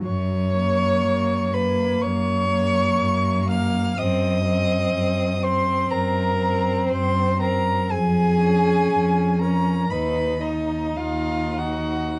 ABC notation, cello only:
X:1
M:4/4
L:1/8
Q:1/4=61
K:F#
V:1 name="Cello" clef=bass
F,,2 F,,2 F,,2 F,,2 | F,,2 F,,2 F,,2 F,,2 | E,,2 E,,2 D,,2 D,,2 |]